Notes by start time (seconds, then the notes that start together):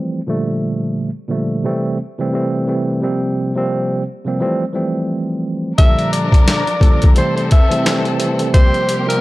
Already playing: E3 F3 G3 A3 C4
0.27 A#2 D3 F3 G3 A3
1.28 A#2 D3 F3 G3 A3
1.63 C3 E3 G3 A3 C4
2.18 C3 E3 G3 A3 C4
2.32 C3 E3 G3 A3 C4
2.66 C3 E3 G3 A3 C4
3.01 C3 F3 G3 A#3 C4
3.55 C3 F3 G3 A#3 C4
4.25 C3 F3 G3 A#3 C4
4.39 E3 F3 G3 A3 C4
4.73 E3 F3 G3 A3 C4
5.78 A#2 D3 F3 G3 D4 A4 A#4 E5, kick, closed hi-hat
5.99 closed hi-hat
6.12 D5, closed hi-hat
6.32 kick, closed hi-hat
6.48 snare, clap, closed hi-hat
6.67 closed hi-hat
6.80 A#2 D3 F3 G3 A4, kick, closed hi-hat
7.02 kick, closed hi-hat
7.15 C3 E3 G3 A3 C4 A4 C5, closed hi-hat
7.36 C5, closed hi-hat
7.51 E5, kick, closed hi-hat
7.70 C3 E3 G3 A3 C4, closed hi-hat
7.83 C3 E3 G3 A3 C4, snare, clap, closed hi-hat
8.05 closed hi-hat
8.17 C3 E3 G3 A3 C4, closed hi-hat
8.39 closed hi-hat
8.53 C3 F3 G3 A#3 C4 G4 C5, kick, closed hi-hat
8.74 closed hi-hat
8.89 closed hi-hat
9.06 C3 F3 G3 A#3 C4 A#4, closed hi-hat